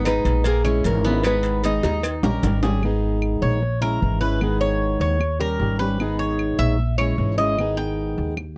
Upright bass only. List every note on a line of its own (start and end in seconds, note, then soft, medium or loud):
0.00 0.20 G#1 loud
0.25 0.81 A#1 medium
0.85 1.78 G#1 loud
1.83 2.21 D#2 medium
2.23 2.42 A#1 medium
2.43 3.36 G#1 medium
3.42 3.98 A#1 loud
4.02 4.95 G#1 medium
5.00 5.56 D#2 medium
5.59 6.53 G#1 loud
6.59 7.14 A#1 loud
7.18 8.11 G#1 medium
8.18 8.55 D#2 medium